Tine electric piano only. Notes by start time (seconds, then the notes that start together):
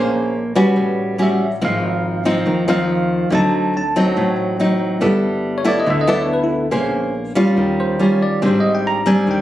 0.56 B4
1.22 E5
1.65 F5
2.70 F5
3.35 A5
3.77 A5
5.58 C#5
5.68 D5
5.80 D#5
5.90 E5
6.01 D#5
6.10 D5
6.21 C#5
6.33 B4
6.44 E4
7.80 C5
8.03 C#5
8.22 D5
8.46 C5
8.60 D#5
8.75 G5
8.87 A#5
9.07 G#5
9.31 G5